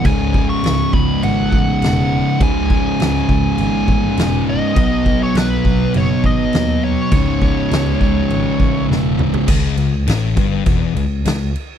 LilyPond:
<<
  \new Staff \with { instrumentName = "Lead electric guitar" } { \time 4/4 \key cis \minor \tempo 4 = 102 gis''8. cis'''8. b''8 fis''2 | gis''2.~ gis''8 dis''8~ | dis''8. cis''16 b'4 cis''8 dis''4 cis''8~ | cis''2. r4 |
r1 | }
  \new Staff \with { instrumentName = "Distorted electric guitar" } { \clef bass \time 4/4 \key cis \minor <cis, gis, cis>1 | <cis, gis, cis>1 | <b, fis b>1 | <cis, gis, cis>1 |
r1 | }
  \new Staff \with { instrumentName = "Distorted electric guitar" } { \clef bass \time 4/4 \key cis \minor <cis, gis, cis>1 | <cis, gis, cis>1 | <b, fis b>1 | <cis, gis, cis>1 |
cis,8 cis,8 a,8 g,8 e,8 cis,8 cis,8 r8 | }
  \new Staff \with { instrumentName = "Tine electric piano" } { \clef bass \time 4/4 \key cis \minor cis,4 cis,8 cis,8 gis,,8 a,,8 e,,4 | cis,4 cis,8 cis,8 gis,,8 a,,8 e,,4 | b,,4 b,,8 b,,8 fis,,8 gis,,8 dis,4 | cis,4 cis,8 cis,8 gis,,8 a,,8 e,,4 |
cis,8 cis,8 a,,8 g,,8 e,,8 cis,8 cis,8 r8 | }
  \new DrumStaff \with { instrumentName = "Drums" } \drummode { \time 4/4 <cymc bd>8 bd8 <cymc sn>8 bd8 cymc8 bd8 <cymc sn>4 | <cymc bd>8 bd8 <cymc sn>8 bd8 cymc8 bd8 <cymc sn>4 | <cymc bd>8 bd8 <cymc sn>8 bd8 cymc8 bd8 <cymc sn>4 | <cymc bd>8 bd8 <cymc sn>8 bd8 cymc8 bd8 sn8 toml16 tomfh16 |
<cymc bd>8 cymc8 <cymc sn>8 <cymc bd>8 <cymc bd>8 cymc8 <cymc sn>8 cymc8 | }
>>